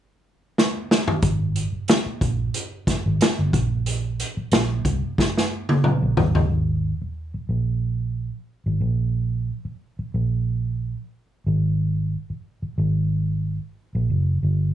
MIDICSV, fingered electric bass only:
0, 0, Header, 1, 3, 480
1, 0, Start_track
1, 0, Tempo, 660066
1, 892, Time_signature, 4, 2, 24, 8
1, 10719, End_track
2, 0, Start_track
2, 0, Title_t, "Fingered electric bass"
2, 0, Program_c, 0, 33
2, 894, Note_on_c, 0, 32, 74
2, 1195, Note_off_c, 0, 32, 0
2, 1610, Note_on_c, 0, 34, 81
2, 1807, Note_off_c, 0, 34, 0
2, 2223, Note_on_c, 0, 32, 77
2, 2313, Note_off_c, 0, 32, 0
2, 2464, Note_on_c, 0, 31, 75
2, 2569, Note_off_c, 0, 31, 0
2, 2569, Note_on_c, 0, 34, 84
2, 3068, Note_off_c, 0, 34, 0
2, 3286, Note_on_c, 0, 34, 71
2, 3484, Note_off_c, 0, 34, 0
2, 3529, Note_on_c, 0, 36, 74
2, 3636, Note_off_c, 0, 36, 0
2, 4381, Note_on_c, 0, 34, 74
2, 4471, Note_off_c, 0, 34, 0
2, 4492, Note_on_c, 0, 32, 80
2, 4688, Note_off_c, 0, 32, 0
2, 4727, Note_on_c, 0, 32, 79
2, 5031, Note_off_c, 0, 32, 0
2, 5447, Note_on_c, 0, 34, 67
2, 6030, Note_off_c, 0, 34, 0
2, 6298, Note_on_c, 0, 32, 70
2, 6389, Note_off_c, 0, 32, 0
2, 6403, Note_on_c, 0, 34, 79
2, 6905, Note_off_c, 0, 34, 0
2, 7376, Note_on_c, 0, 34, 67
2, 7955, Note_off_c, 0, 34, 0
2, 8338, Note_on_c, 0, 32, 79
2, 8835, Note_off_c, 0, 32, 0
2, 9292, Note_on_c, 0, 32, 80
2, 9874, Note_off_c, 0, 32, 0
2, 10144, Note_on_c, 0, 34, 78
2, 10234, Note_off_c, 0, 34, 0
2, 10252, Note_on_c, 0, 30, 67
2, 10449, Note_off_c, 0, 30, 0
2, 10492, Note_on_c, 0, 31, 73
2, 10719, Note_off_c, 0, 31, 0
2, 10719, End_track
3, 0, Start_track
3, 0, Title_t, "Muted fingered electric bass strokes"
3, 1254, Note_on_c, 9, 29, 42
3, 1327, Note_off_c, 9, 29, 0
3, 1497, Note_on_c, 9, 29, 36
3, 1570, Note_off_c, 9, 29, 0
3, 2087, Note_on_c, 9, 29, 40
3, 2159, Note_off_c, 9, 29, 0
3, 3179, Note_on_c, 9, 29, 42
3, 3252, Note_off_c, 9, 29, 0
3, 5103, Note_on_c, 9, 29, 39
3, 5175, Note_off_c, 9, 29, 0
3, 5339, Note_on_c, 9, 29, 36
3, 5412, Note_off_c, 9, 29, 0
3, 7017, Note_on_c, 9, 29, 39
3, 7090, Note_off_c, 9, 29, 0
3, 7265, Note_on_c, 9, 29, 37
3, 7337, Note_off_c, 9, 29, 0
3, 8944, Note_on_c, 9, 29, 38
3, 9017, Note_off_c, 9, 29, 0
3, 9180, Note_on_c, 9, 29, 39
3, 9253, Note_off_c, 9, 29, 0
3, 10719, End_track
0, 0, End_of_file